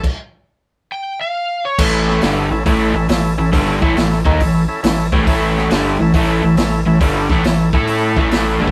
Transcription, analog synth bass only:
X:1
M:4/4
L:1/8
Q:"Swing" 1/4=138
K:Amix
V:1 name="Analog synth bass" clef=bass
z8 | A,,,2 G,,, A,,, A,,, A,,, A,,, A,,, | G,,, A,,, A,,, ^D,, A,,, z A,,, A,,, | A,,,2 G,,, A,,, A,,, A,,, A,,, A,,, |
G,,, A,,, A,,, A,,2 A,,,2 G,,, |]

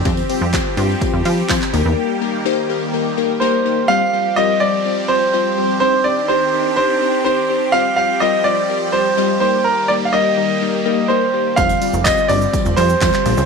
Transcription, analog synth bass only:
X:1
M:4/4
L:1/16
Q:1/4=125
K:Eb
V:1 name="Analog synth bass" clef=bass
F,,2 z F,,2 z G,,2 z F,, F,2 F, z E,, =E,, | z16 | z16 | z16 |
z16 | z16 | F,,,2 z F,,,2 z G,,,2 z F,,, F,,2 F,, z B,,, _D,, |]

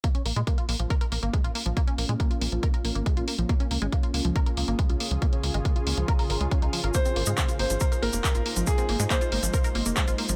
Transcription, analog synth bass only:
X:1
M:4/4
L:1/16
Q:1/4=139
K:Bbm
V:1 name="Analog synth bass" clef=bass
z2 B,,, B,, z2 B,,, B,,, z2 B,,, A,,, z B,,, z B,,, | z2 B,,, B,, z2 B,,, B,,, z2 B,,, A,,, z B,,, z B,,, | z2 D,, A,,, z2 D,, D,, z2 D,, A,,, z D,, z D,, | z2 D,, A,,, z2 D,, D,, z2 A,,, D,, z D,, z A,,, |
z2 A,,, A,, z2 A,,, A,,, z2 A,,, F,,, z A,,, z A,,, | z2 A,,, A,, z2 A,,, A,,, z2 A,,, F,,, z A,,, z A,,, |]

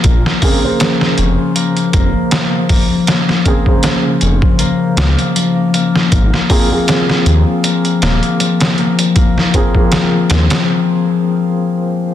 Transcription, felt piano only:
X:1
M:4/4
L:1/16
Q:"Swing 16ths" 1/4=79
K:Bbm
V:1 name="Felt piano"
z2 [D,B,CA] [D,B,Ac]12- [D,B,Ac]- | [D,B,Ac]2 [D,B,CA] [D,B,Ac]12- [D,B,Ac] | z2 [F,B,CA] [F,B,CA]12- [F,B,CA]- | [F,B,CA]2 [F,B,CA] [F,B,CA]12- [F,B,CA] |]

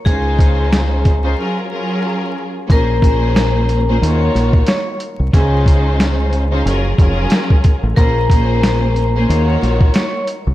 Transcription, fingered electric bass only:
X:1
M:4/4
L:1/16
Q:"Swing 16ths" 1/4=91
K:Bbm
V:1 name="Fingered electric bass" clef=bass
D,,8 z8 | B,,,8 E,,2 B,,,2 z3 C,, | D,,8 G,,,2 F,,,2 z3 =A,,, | B,,,8 E,,2 B,,,2 z3 C,, |]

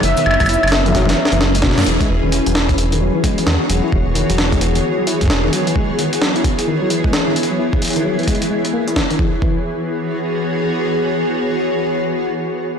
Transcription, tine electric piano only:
X:1
M:4/4
L:1/16
Q:"Swing 16ths" 1/4=131
K:E
V:1 name="Tine electric piano" clef=bass
E, D, z F, E z2 D, F, E, z E, z G, B,, ^A, | E, G, E, D, z F, E z2 D, F, E, G, E, D, z | F, E z2 D, F, E, G, E, D, z F, E z2 D, | F, E, G, E, D, z F, E z2 D, F, E, G, E, D, |
z F, E z2 D, F, E, G, E, G, E ^A, E E, D, | E, z E, z12 z | z16 |]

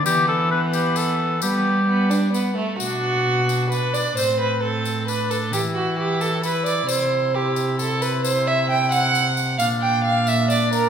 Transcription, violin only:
X:1
M:3/4
L:1/8
Q:1/4=132
K:Bphr
V:1 name="Violin"
B,2 B,4 | B,2 B, D B, A, | F4 B d | c B A2 B A |
G F G A B d | c2 G2 A B | c e g f3 | =f g f e d _B |]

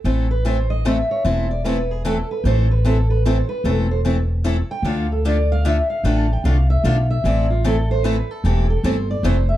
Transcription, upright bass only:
X:1
M:3/4
L:1/8
Q:"Swing" 1/4=150
K:Am
V:1 name="Upright bass" clef=bass
A,,,6 | E,,,6 | A,,,6 | E,,,6 |
D,,6 | A,,,2 C,,2 B,,,2 | A,,,6 | E,,,2 G,,,2 F,,,2 |]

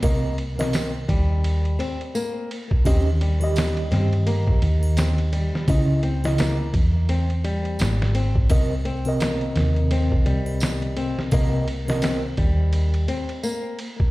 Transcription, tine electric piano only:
X:1
M:4/4
L:1/16
Q:"Swing 16ths" 1/4=85
K:Cphr
V:1 name="Tine electric piano"
[C,CBe]2 z [C,CBe]2 z8 z3 | [E,DGe] z2 [E,Ge]12- [E,Ge] | [D,D_Fe]2 z [D,Fe]2 z8 z3 | [C,CBe] z2 [C,CBe]12- [C,CBe] |
[C,CBe]2 z [C,CBe]2 z8 z3 |]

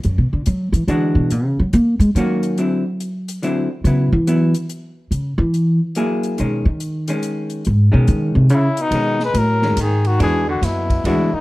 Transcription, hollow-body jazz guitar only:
X:1
M:3/4
L:1/8
Q:"Swing" 1/4=142
K:B
V:1 name="Hollow-body jazz guitar"
z4 [E,G,=DF]2 | z4 [D,A,CF]2 | [=D,F,=CE] z3 [D,F,CE] z | [F,B,E] z [F,B,E] z3 |
z4 [F,A,EG]2 | [D,G,C] z2 [D,G,C]3 | z [D,G,C]3 z2 | [D,G,C] z2 [D,G,C] z2 |
[E,G,=DF] z3 [E,G,DF] z |]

